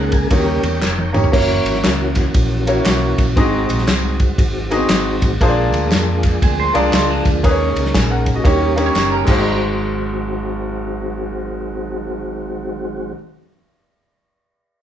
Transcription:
Already playing: C#2 C#3 G#3 A#3 C#4 D#4 G#4 A#4 C#5 F#5
0.12 G#5, kick, ride, tambourine
0.30 D#2 C#3 D#3 G3 A#3 C#4 D#4 F#4 A#4 C#5 G5, kick, ride, tambourine
0.38 G4
0.63 E2, ride, tambourine
0.82 F1, snare, clap, tambourine
0.98 high tom
1.13 A#3 C#4 D#4 G4 C#5, mid tom, tambourine
1.24 floor tom
1.32 F#1 E3 F#3 A#3 C#4 E4 F#4 C#5, kick, crash, tambourine
1.64 G#1, ride, tambourine
1.75 snare
1.84 C#2, snare, clap, ride, tambourine
2.15 kick, clap, ride, tambourine
2.34 A#1, kick, ride, tambourine
2.67 A#3 C#4 E4 F#4 C#5, ride, tambourine
2.85 B1, snare, clap, ride, tambourine
3.18 A#1, kick, snare, ride, tambourine
3.36 G#1 G#2 D#3 G#3 C4 D#4 F#4 G#4 D#5, kick, ride, tambourine
3.69 A#1, ride, tambourine
3.79 snare
3.88 C2, snare, clap, ride, tambourine
4.20 kick, ride, tambourine
4.38 G#1, kick, ride, tambourine
4.71 A#3 D#4 F#4 G#4 D#5, ride, tambourine
4.76 C4
4.89 G#1, snare, clap, ride, tambourine
5.22 A1, kick, snare, ride, tambourine
5.40 A#1 A#2 F3 A#3 D4 F4 G#4 C5, kick, ride, tambourine
5.49 D5
5.72 D2, ride, tambourine
5.92 F2, snare, clap, ride, tambourine
6.23 kick, clap, ride, tambourine
6.42 D2 C4 G#4, kick, ride, tambourine
6.60 C5
6.74 C2 A#3 D4 F4 G#4 A#4 D5, ride, tambourine
6.86 C4 G#4
6.93 C#2 G#3 F4, snare, clap, ride, tambourine
7.10 F3 D4
7.25 D2, kick, snare, ride, tambourine
7.43 D#2 D#3 A#3 C#4 D#4 G#4 B4, kick, ride, tambourine
7.51 C#5
7.76 C#2, ride, tambourine
7.85 snare
7.94 A#1 G#5, kick, snare, clap, ride, tambourine
8.11 A#4 F#5
8.26 kick, ride, tambourine
8.35 F#4 D#5
8.44 D#2 D#3 G3 A#3 C#4 D#4 G4 C#5, kick, ride, tambourine
8.76 A#3 C#4 D#4 G4 C#5, ride, tambourine
8.86 C#5
8.95 F#1, snare, clap, tambourine
9.12 C#4 A#4
9.25 G#1 D#3 F#3 G#3 C4 D#4 F#4 G4, kick, clap, crash
9.29 A#3 F#4 C5
9.38 G3 D#4

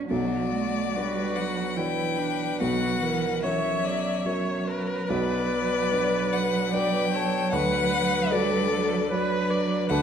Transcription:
Already playing: D4 F#4 B4
0.09 B1 B2 F#3 F#4 D5
0.52 A3
0.94 F#3 G3 D4 F#4 B4
1.35 F#3 F#5
1.77 E3 F#3 D4 E4 B4 G5
2.19 D4
2.59 B1 B2 F#3 F#4 F#5
3.02 E3 A#4
3.42 E3 F#3 C#4 A#4 C#5 E5
3.83 F#3 D5
4.26 F#3 C#4 A#4 C#5
4.67 A#4 B4
5.08 B1 B2 F#3 B4 D5
5.92 F#3 D4 B4
6.32 F#5
6.73 F#3 D4 B4 D5 G5
7.13 A4 C#5
7.51 D2 D3 B4 F#5
8.31 F#3 G3 D4 A4 B4 D5
8.71 F#3
9.11 F#3 D4 B4
9.51 D5
9.89 D2 D3 A4 B4 F#5

